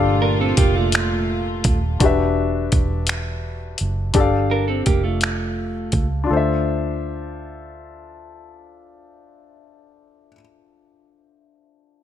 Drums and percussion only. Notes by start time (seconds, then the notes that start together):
0.57 kick, closed hi-hat
0.92 finger snap, closed hi-hat
1.64 kick, closed hi-hat
2.00 kick, closed hi-hat
2.72 kick, closed hi-hat
3.07 finger snap, closed hi-hat
3.78 closed hi-hat
4.14 kick, closed hi-hat
4.86 kick, closed hi-hat
5.21 finger snap, closed hi-hat
5.92 kick, closed hi-hat